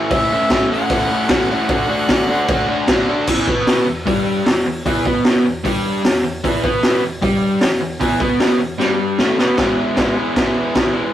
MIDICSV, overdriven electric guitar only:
0, 0, Header, 1, 2, 480
1, 0, Start_track
1, 0, Tempo, 394477
1, 134, Time_signature, 4, 2, 24, 8
1, 13547, End_track
2, 0, Start_track
2, 0, Title_t, "Overdriven electric guitar"
2, 0, Program_c, 0, 29
2, 0, Note_on_c, 0, 52, 119
2, 0, Note_on_c, 0, 57, 112
2, 0, Note_on_c, 0, 61, 110
2, 0, Note_on_c, 0, 64, 126
2, 125, Note_off_c, 0, 52, 0
2, 130, Note_on_c, 0, 45, 115
2, 139, Note_off_c, 0, 61, 0
2, 139, Note_on_c, 0, 52, 107
2, 142, Note_off_c, 0, 57, 0
2, 147, Note_off_c, 0, 64, 0
2, 147, Note_on_c, 0, 57, 110
2, 154, Note_on_c, 0, 61, 109
2, 161, Note_on_c, 0, 64, 124
2, 364, Note_off_c, 0, 45, 0
2, 377, Note_off_c, 0, 52, 0
2, 378, Note_on_c, 0, 45, 97
2, 390, Note_off_c, 0, 57, 0
2, 390, Note_off_c, 0, 61, 0
2, 392, Note_on_c, 0, 52, 92
2, 393, Note_off_c, 0, 64, 0
2, 395, Note_on_c, 0, 57, 91
2, 404, Note_on_c, 0, 61, 107
2, 408, Note_on_c, 0, 64, 97
2, 610, Note_off_c, 0, 52, 0
2, 611, Note_off_c, 0, 45, 0
2, 625, Note_on_c, 0, 52, 103
2, 626, Note_on_c, 0, 45, 86
2, 628, Note_off_c, 0, 61, 0
2, 633, Note_off_c, 0, 57, 0
2, 637, Note_off_c, 0, 64, 0
2, 638, Note_on_c, 0, 57, 100
2, 642, Note_on_c, 0, 61, 108
2, 652, Note_on_c, 0, 64, 95
2, 838, Note_off_c, 0, 45, 0
2, 848, Note_off_c, 0, 52, 0
2, 853, Note_on_c, 0, 45, 82
2, 860, Note_off_c, 0, 61, 0
2, 862, Note_on_c, 0, 52, 84
2, 864, Note_off_c, 0, 57, 0
2, 869, Note_off_c, 0, 64, 0
2, 869, Note_on_c, 0, 57, 89
2, 875, Note_on_c, 0, 61, 99
2, 884, Note_on_c, 0, 64, 87
2, 1102, Note_off_c, 0, 45, 0
2, 1109, Note_off_c, 0, 52, 0
2, 1110, Note_off_c, 0, 57, 0
2, 1117, Note_on_c, 0, 45, 97
2, 1119, Note_off_c, 0, 61, 0
2, 1123, Note_on_c, 0, 52, 103
2, 1124, Note_on_c, 0, 57, 108
2, 1129, Note_off_c, 0, 64, 0
2, 1134, Note_on_c, 0, 61, 102
2, 1143, Note_on_c, 0, 64, 113
2, 1342, Note_off_c, 0, 45, 0
2, 1347, Note_off_c, 0, 52, 0
2, 1356, Note_on_c, 0, 45, 95
2, 1359, Note_off_c, 0, 57, 0
2, 1361, Note_off_c, 0, 61, 0
2, 1361, Note_on_c, 0, 52, 94
2, 1367, Note_off_c, 0, 64, 0
2, 1373, Note_on_c, 0, 57, 104
2, 1375, Note_on_c, 0, 61, 104
2, 1382, Note_on_c, 0, 64, 102
2, 1576, Note_off_c, 0, 45, 0
2, 1579, Note_off_c, 0, 52, 0
2, 1586, Note_off_c, 0, 57, 0
2, 1591, Note_on_c, 0, 45, 93
2, 1593, Note_off_c, 0, 61, 0
2, 1593, Note_on_c, 0, 52, 85
2, 1599, Note_off_c, 0, 64, 0
2, 1600, Note_on_c, 0, 57, 81
2, 1608, Note_on_c, 0, 61, 109
2, 1613, Note_on_c, 0, 64, 103
2, 1818, Note_off_c, 0, 45, 0
2, 1833, Note_on_c, 0, 45, 98
2, 1837, Note_off_c, 0, 52, 0
2, 1840, Note_off_c, 0, 57, 0
2, 1844, Note_off_c, 0, 61, 0
2, 1852, Note_off_c, 0, 64, 0
2, 1852, Note_on_c, 0, 52, 96
2, 1855, Note_on_c, 0, 57, 89
2, 1859, Note_on_c, 0, 61, 112
2, 1867, Note_on_c, 0, 64, 96
2, 2053, Note_off_c, 0, 45, 0
2, 2060, Note_off_c, 0, 57, 0
2, 2063, Note_off_c, 0, 52, 0
2, 2066, Note_off_c, 0, 61, 0
2, 2070, Note_off_c, 0, 64, 0
2, 2070, Note_on_c, 0, 50, 116
2, 2075, Note_on_c, 0, 57, 108
2, 2085, Note_on_c, 0, 62, 115
2, 2090, Note_on_c, 0, 66, 118
2, 2281, Note_off_c, 0, 50, 0
2, 2293, Note_off_c, 0, 57, 0
2, 2295, Note_on_c, 0, 50, 95
2, 2296, Note_off_c, 0, 62, 0
2, 2301, Note_off_c, 0, 66, 0
2, 2308, Note_on_c, 0, 57, 89
2, 2311, Note_on_c, 0, 62, 98
2, 2316, Note_on_c, 0, 66, 99
2, 2515, Note_off_c, 0, 50, 0
2, 2526, Note_off_c, 0, 57, 0
2, 2530, Note_on_c, 0, 50, 98
2, 2533, Note_off_c, 0, 62, 0
2, 2537, Note_off_c, 0, 66, 0
2, 2540, Note_on_c, 0, 57, 92
2, 2547, Note_on_c, 0, 62, 91
2, 2552, Note_on_c, 0, 66, 108
2, 2765, Note_off_c, 0, 50, 0
2, 2767, Note_off_c, 0, 57, 0
2, 2779, Note_off_c, 0, 66, 0
2, 2780, Note_off_c, 0, 62, 0
2, 2780, Note_on_c, 0, 50, 79
2, 2782, Note_on_c, 0, 57, 87
2, 2794, Note_on_c, 0, 66, 92
2, 2795, Note_on_c, 0, 62, 96
2, 2998, Note_off_c, 0, 50, 0
2, 3003, Note_off_c, 0, 57, 0
2, 3012, Note_off_c, 0, 62, 0
2, 3012, Note_on_c, 0, 50, 93
2, 3017, Note_on_c, 0, 57, 93
2, 3020, Note_off_c, 0, 66, 0
2, 3027, Note_on_c, 0, 62, 103
2, 3035, Note_on_c, 0, 66, 115
2, 3243, Note_off_c, 0, 50, 0
2, 3254, Note_off_c, 0, 57, 0
2, 3255, Note_off_c, 0, 62, 0
2, 3257, Note_on_c, 0, 50, 88
2, 3269, Note_on_c, 0, 57, 95
2, 3269, Note_on_c, 0, 62, 109
2, 3272, Note_off_c, 0, 66, 0
2, 3286, Note_on_c, 0, 66, 104
2, 3494, Note_off_c, 0, 50, 0
2, 3503, Note_off_c, 0, 57, 0
2, 3508, Note_off_c, 0, 62, 0
2, 3509, Note_on_c, 0, 50, 94
2, 3514, Note_off_c, 0, 66, 0
2, 3518, Note_on_c, 0, 57, 84
2, 3523, Note_on_c, 0, 62, 90
2, 3529, Note_on_c, 0, 66, 98
2, 3729, Note_off_c, 0, 50, 0
2, 3734, Note_off_c, 0, 57, 0
2, 3738, Note_off_c, 0, 62, 0
2, 3744, Note_on_c, 0, 50, 94
2, 3748, Note_on_c, 0, 57, 82
2, 3751, Note_off_c, 0, 66, 0
2, 3753, Note_on_c, 0, 62, 99
2, 3766, Note_on_c, 0, 66, 94
2, 3972, Note_off_c, 0, 50, 0
2, 3974, Note_off_c, 0, 57, 0
2, 3976, Note_off_c, 0, 62, 0
2, 3983, Note_off_c, 0, 66, 0
2, 3988, Note_on_c, 0, 40, 105
2, 3991, Note_on_c, 0, 52, 123
2, 4221, Note_off_c, 0, 40, 0
2, 4221, Note_on_c, 0, 47, 95
2, 4223, Note_off_c, 0, 52, 0
2, 4234, Note_on_c, 0, 59, 98
2, 4699, Note_off_c, 0, 47, 0
2, 4705, Note_off_c, 0, 59, 0
2, 4710, Note_on_c, 0, 40, 72
2, 4903, Note_off_c, 0, 40, 0
2, 4934, Note_on_c, 0, 43, 93
2, 4947, Note_on_c, 0, 55, 97
2, 5416, Note_off_c, 0, 43, 0
2, 5422, Note_on_c, 0, 40, 79
2, 5423, Note_off_c, 0, 55, 0
2, 5619, Note_off_c, 0, 40, 0
2, 5678, Note_on_c, 0, 40, 81
2, 5868, Note_off_c, 0, 40, 0
2, 5908, Note_on_c, 0, 40, 103
2, 5927, Note_on_c, 0, 52, 111
2, 6143, Note_off_c, 0, 40, 0
2, 6153, Note_off_c, 0, 52, 0
2, 6159, Note_on_c, 0, 47, 87
2, 6165, Note_on_c, 0, 59, 104
2, 6629, Note_off_c, 0, 47, 0
2, 6632, Note_off_c, 0, 59, 0
2, 6641, Note_on_c, 0, 40, 78
2, 6829, Note_off_c, 0, 40, 0
2, 6863, Note_on_c, 0, 43, 95
2, 6873, Note_on_c, 0, 55, 109
2, 7341, Note_off_c, 0, 43, 0
2, 7346, Note_off_c, 0, 55, 0
2, 7363, Note_on_c, 0, 40, 76
2, 7550, Note_off_c, 0, 40, 0
2, 7595, Note_on_c, 0, 40, 76
2, 7786, Note_off_c, 0, 40, 0
2, 7833, Note_on_c, 0, 40, 104
2, 7847, Note_on_c, 0, 52, 124
2, 8065, Note_off_c, 0, 40, 0
2, 8065, Note_on_c, 0, 47, 97
2, 8072, Note_off_c, 0, 52, 0
2, 8073, Note_on_c, 0, 59, 113
2, 8534, Note_on_c, 0, 40, 75
2, 8540, Note_off_c, 0, 47, 0
2, 8545, Note_off_c, 0, 59, 0
2, 8734, Note_off_c, 0, 40, 0
2, 8778, Note_on_c, 0, 43, 94
2, 8786, Note_on_c, 0, 55, 95
2, 9256, Note_off_c, 0, 43, 0
2, 9260, Note_off_c, 0, 55, 0
2, 9274, Note_on_c, 0, 40, 69
2, 9463, Note_off_c, 0, 40, 0
2, 9507, Note_on_c, 0, 40, 85
2, 9699, Note_off_c, 0, 40, 0
2, 9738, Note_on_c, 0, 40, 90
2, 9750, Note_on_c, 0, 52, 119
2, 9975, Note_off_c, 0, 40, 0
2, 9981, Note_off_c, 0, 52, 0
2, 9987, Note_on_c, 0, 47, 97
2, 9997, Note_on_c, 0, 59, 111
2, 10455, Note_on_c, 0, 40, 73
2, 10458, Note_off_c, 0, 47, 0
2, 10463, Note_off_c, 0, 59, 0
2, 10651, Note_off_c, 0, 40, 0
2, 10695, Note_on_c, 0, 43, 103
2, 10703, Note_on_c, 0, 55, 101
2, 11170, Note_off_c, 0, 43, 0
2, 11174, Note_off_c, 0, 55, 0
2, 11178, Note_on_c, 0, 45, 92
2, 11190, Note_on_c, 0, 57, 103
2, 11412, Note_off_c, 0, 45, 0
2, 11418, Note_off_c, 0, 57, 0
2, 11424, Note_on_c, 0, 47, 102
2, 11432, Note_on_c, 0, 59, 116
2, 11651, Note_off_c, 0, 47, 0
2, 11655, Note_on_c, 0, 52, 96
2, 11659, Note_off_c, 0, 59, 0
2, 11677, Note_on_c, 0, 56, 90
2, 11692, Note_on_c, 0, 59, 96
2, 11702, Note_on_c, 0, 64, 109
2, 12114, Note_off_c, 0, 52, 0
2, 12119, Note_on_c, 0, 52, 94
2, 12131, Note_off_c, 0, 56, 0
2, 12136, Note_on_c, 0, 56, 93
2, 12141, Note_off_c, 0, 59, 0
2, 12145, Note_on_c, 0, 59, 98
2, 12155, Note_off_c, 0, 64, 0
2, 12160, Note_on_c, 0, 64, 106
2, 12353, Note_off_c, 0, 64, 0
2, 12358, Note_on_c, 0, 64, 67
2, 12376, Note_off_c, 0, 59, 0
2, 12381, Note_on_c, 0, 59, 65
2, 12394, Note_off_c, 0, 56, 0
2, 12399, Note_on_c, 0, 56, 55
2, 12584, Note_off_c, 0, 52, 0
2, 12589, Note_on_c, 0, 52, 65
2, 12596, Note_off_c, 0, 56, 0
2, 12602, Note_off_c, 0, 59, 0
2, 12610, Note_on_c, 0, 56, 73
2, 12617, Note_on_c, 0, 59, 75
2, 12631, Note_off_c, 0, 64, 0
2, 12636, Note_on_c, 0, 64, 73
2, 13063, Note_off_c, 0, 52, 0
2, 13068, Note_on_c, 0, 52, 78
2, 13072, Note_off_c, 0, 56, 0
2, 13081, Note_off_c, 0, 59, 0
2, 13087, Note_on_c, 0, 56, 75
2, 13095, Note_on_c, 0, 59, 82
2, 13104, Note_off_c, 0, 64, 0
2, 13109, Note_on_c, 0, 64, 83
2, 13308, Note_off_c, 0, 64, 0
2, 13313, Note_on_c, 0, 64, 68
2, 13321, Note_off_c, 0, 59, 0
2, 13336, Note_on_c, 0, 59, 69
2, 13338, Note_off_c, 0, 56, 0
2, 13353, Note_on_c, 0, 56, 63
2, 13547, Note_off_c, 0, 52, 0
2, 13547, Note_off_c, 0, 56, 0
2, 13547, Note_off_c, 0, 59, 0
2, 13547, Note_off_c, 0, 64, 0
2, 13547, End_track
0, 0, End_of_file